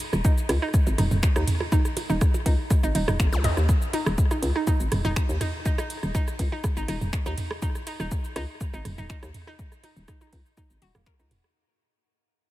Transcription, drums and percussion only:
0.00 closed hi-hat medium
0.00 ride medium
0.13 cross-stick soft
0.13 percussion blips soft
0.13 shaker soft
0.25 kick loud
0.25 shaker medium
0.38 shaker soft
0.49 cross-stick medium
0.49 closed hi-hat loud
0.49 ride medium
0.49 percussion blips soft
0.74 kick loud
0.74 cross-stick soft
0.74 shaker medium
0.87 percussion blips soft
0.87 shaker soft
0.98 cross-stick soft
0.98 closed hi-hat loud
0.98 mid tom medium
0.98 ride medium
1.11 mid tom medium
1.11 shaker soft
1.23 finger snap loud
1.23 kick loud
1.23 percussion blips soft
1.23 shaker medium
1.36 cross-stick medium
1.36 shaker soft
1.47 closed hi-hat loud
1.47 mid tom medium
1.47 ride medium
1.60 cross-stick soft
1.60 percussion blips soft
1.72 kick loud
1.72 shaker medium
1.85 cross-stick soft
1.85 shaker soft
1.97 closed hi-hat medium
1.97 ride medium
1.97 percussion blips soft
2.10 shaker soft
2.21 kick loud
2.21 cross-stick medium
2.21 shaker medium
2.34 percussion blips soft
2.34 shaker soft
2.46 kick medium
2.46 closed hi-hat loud
2.46 ride medium
2.70 kick loud
2.70 cross-stick soft
2.70 percussion blips soft
2.70 shaker medium
2.83 shaker soft
2.95 closed hi-hat loud
2.95 ride medium
3.08 cross-stick medium
3.08 mid tom medium
3.08 percussion blips soft
3.08 shaker soft
3.20 finger snap loud
3.20 kick loud
3.20 shaker medium
3.32 cross-stick soft
3.32 shaker soft
3.44 closed hi-hat loud
3.44 mid tom medium
3.44 ride medium
3.44 percussion blips soft
3.57 cross-stick soft
3.57 shaker soft
3.69 kick loud
3.69 cross-stick soft
3.69 shaker medium
3.82 shaker soft
3.93 closed hi-hat medium
3.93 ride medium
3.93 percussion blips soft
4.06 cross-stick medium
4.06 shaker soft
4.18 kick loud
4.18 shaker medium
4.31 cross-stick soft
4.31 percussion blips soft
4.31 shaker soft
4.43 closed hi-hat medium
4.43 ride medium
4.56 cross-stick soft
4.67 kick loud
4.67 percussion blips soft
4.67 shaker medium
4.80 shaker soft
4.92 cross-stick medium
4.92 closed hi-hat medium
4.92 mid tom medium
4.92 ride medium
5.05 mid tom medium
5.05 percussion blips soft
5.05 shaker soft
5.16 finger snap loud
5.16 kick loud
5.16 cross-stick soft
5.16 shaker medium
5.29 shaker soft
5.41 cross-stick soft
5.41 closed hi-hat medium
5.41 mid tom medium
5.41 ride medium
5.41 percussion blips soft
5.65 kick loud
5.65 shaker medium
5.78 cross-stick medium
5.78 percussion blips soft
5.78 shaker soft
5.90 closed hi-hat medium
5.90 ride medium
6.03 cross-stick soft
6.03 shaker soft
6.15 kick loud
6.15 percussion blips soft
6.15 shaker medium
6.28 cross-stick soft
6.28 shaker soft
6.39 kick medium
6.39 closed hi-hat medium
6.39 ride medium
6.52 percussion blips soft
6.64 kick loud
6.64 cross-stick medium
6.64 shaker medium
6.77 shaker soft
6.88 cross-stick soft
6.88 closed hi-hat medium
6.88 ride medium
6.88 percussion blips soft
7.01 mid tom medium
7.01 shaker soft
7.13 finger snap loud
7.13 kick loud
7.13 cross-stick soft
7.13 shaker medium
7.26 percussion blips soft
7.26 shaker soft
7.38 closed hi-hat medium
7.38 mid tom medium
7.38 ride medium
7.51 cross-stick medium
7.62 kick loud
7.62 percussion blips soft
7.62 shaker medium
7.75 cross-stick soft
7.75 shaker soft
7.87 closed hi-hat medium
7.87 ride medium
8.00 cross-stick soft
8.00 percussion blips soft
8.00 shaker soft
8.11 kick loud
8.11 shaker medium
8.24 shaker soft
8.36 cross-stick medium
8.36 closed hi-hat medium
8.36 ride medium
8.36 percussion blips soft
8.61 kick loud
8.61 cross-stick soft
8.61 shaker medium
8.74 percussion blips soft
8.74 shaker soft
8.85 cross-stick soft
8.85 closed hi-hat medium
8.85 mid tom medium
8.85 ride medium
8.98 mid tom medium
8.98 shaker soft
9.10 finger snap loud
9.10 kick loud
9.10 percussion blips soft
9.10 shaker medium
9.23 cross-stick medium
9.23 shaker soft
9.34 closed hi-hat medium
9.34 mid tom medium
9.34 ride medium
9.47 cross-stick soft
9.47 percussion blips soft
9.59 kick loud
9.59 shaker medium
9.72 cross-stick soft
9.72 shaker soft
9.84 closed hi-hat medium
9.84 ride medium
9.84 percussion blips soft
9.97 shaker soft
10.08 kick loud
10.08 cross-stick medium
10.08 shaker medium
10.21 percussion blips soft
10.21 shaker soft
10.33 kick medium
10.33 closed hi-hat medium
10.33 ride medium
10.46 shaker soft
10.57 kick loud
10.57 cross-stick soft
10.57 percussion blips soft
10.57 shaker medium
10.70 shaker soft
10.82 closed hi-hat medium
10.82 ride medium
10.95 cross-stick medium
10.95 mid tom medium
10.95 percussion blips soft
10.95 shaker soft
11.06 finger snap loud
11.06 kick loud
11.06 shaker medium
11.19 cross-stick soft
11.19 shaker soft
11.31 closed hi-hat medium
11.31 mid tom medium
11.31 ride medium
11.31 percussion blips soft
11.44 cross-stick soft

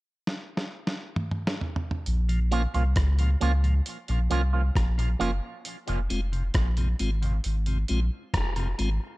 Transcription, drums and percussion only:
0.27 snare medium
0.57 snare medium
0.87 snare medium
1.16 mid tom medium
1.31 mid tom medium
1.47 snare medium
1.61 floor tom medium
1.76 floor tom loud
1.91 floor tom medium
2.06 closed hi-hat medium
2.29 closed hi-hat soft
2.52 closed hi-hat medium
2.74 closed hi-hat soft
2.96 kick loud
2.96 cross-stick loud
2.96 closed hi-hat medium
3.19 closed hi-hat medium
3.41 closed hi-hat medium
3.64 closed hi-hat soft
3.86 closed hi-hat medium
4.08 closed hi-hat soft
4.31 closed hi-hat medium
4.76 kick loud
4.76 cross-stick loud
4.76 closed hi-hat medium
4.99 closed hi-hat medium
5.21 closed hi-hat medium
5.65 closed hi-hat medium
5.88 closed hi-hat medium
6.10 closed hi-hat medium
6.33 closed hi-hat soft
6.54 kick loud
6.54 cross-stick loud
6.54 closed hi-hat medium
6.77 closed hi-hat medium
6.99 closed hi-hat medium
7.23 closed hi-hat soft
7.44 closed hi-hat medium
7.66 closed hi-hat soft
7.88 closed hi-hat medium
8.34 kick medium
8.34 cross-stick loud
8.34 closed hi-hat medium
8.56 closed hi-hat soft
8.79 closed hi-hat medium

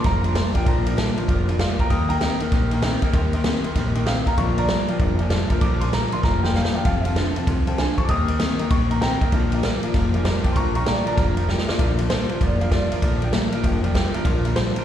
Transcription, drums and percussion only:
0.04 kick loud
0.04 snare soft
0.04 ride medium
0.24 ride medium
0.35 snare loud
0.35 ride medium
0.55 kick medium
0.55 ride medium
0.66 kick loud
0.66 ride loud
0.86 ride medium
0.98 snare loud
0.98 ride medium
1.17 ride medium
1.28 kick loud
1.28 ride medium
1.49 ride medium
1.59 snare loud
1.59 ride medium
1.79 kick medium
1.79 ride medium
1.90 kick loud
1.90 ride medium
2.10 ride medium
2.21 snare loud
2.21 ride medium
2.40 ride medium
2.52 kick loud
2.52 snare soft
2.52 ride medium
2.71 ride medium
2.82 snare loud
2.82 ride medium
3.02 kick medium
3.02 ride medium
3.13 kick loud
3.13 ride medium
3.33 ride medium
3.44 snare loud
3.44 ride medium
3.64 ride medium
3.75 kick loud
3.75 snare soft
3.75 ride loud
3.95 ride medium
4.06 snare loud
4.06 ride medium
4.27 kick medium
4.27 ride medium
4.38 kick loud
4.38 ride medium
4.58 ride medium
4.68 snare loud
4.68 ride medium
4.88 ride medium
4.99 kick loud
4.99 ride medium
5.19 ride soft
5.30 snare loud
5.30 ride medium
5.50 kick medium
5.50 ride medium
5.61 kick loud
5.61 ride loud
5.81 ride medium
5.93 snare loud
5.93 ride medium
6.12 ride medium
6.23 kick loud
6.23 snare medium
6.44 snare medium
6.55 snare medium
6.65 snare loud
6.85 kick loud
6.85 ride medium
7.05 ride medium
7.16 snare loud
7.16 ride medium
7.36 ride medium
7.47 kick loud
7.47 ride medium
7.67 ride medium
7.78 snare loud
7.78 ride medium
7.98 kick medium
7.98 ride medium
8.09 kick loud
8.09 ride medium
8.28 ride medium
8.40 snare loud
8.40 ride medium
8.59 ride medium
8.70 kick loud
8.70 ride medium
8.91 ride medium
9.02 snare medium
9.02 ride medium
9.21 kick medium
9.21 ride medium
9.32 kick loud
9.32 ride medium
9.52 ride medium
9.63 snare loud
9.63 ride medium
9.83 ride medium
9.94 kick loud
9.94 snare soft
9.94 ride medium
10.14 ride soft
10.25 snare loud
10.25 ride medium
10.44 kick medium
10.44 ride medium
10.56 kick loud
10.56 ride medium
10.75 ride medium
10.86 snare loud
10.86 ride medium
11.07 ride medium
11.18 kick loud
11.18 snare soft
11.18 ride medium
11.37 ride medium
11.48 snare medium
11.58 snare medium
11.69 snare loud
11.79 kick loud
11.79 ride loud
11.99 ride medium
12.10 snare loud
12.10 ride medium
12.29 ride medium
12.41 kick loud
12.41 ride medium
12.61 ride medium
12.72 kick medium
12.72 snare loud
12.72 ride medium
12.92 ride medium
13.02 kick loud
13.02 ride loud
13.22 ride medium
13.33 snare loud
13.33 ride medium
13.52 ride medium
13.64 kick loud
13.64 ride loud
13.84 ride medium
13.95 kick medium
13.95 snare loud
13.95 ride medium
14.14 ride medium
14.25 kick loud
14.25 ride loud
14.45 ride medium
14.56 snare loud
14.56 ride medium
14.76 ride medium

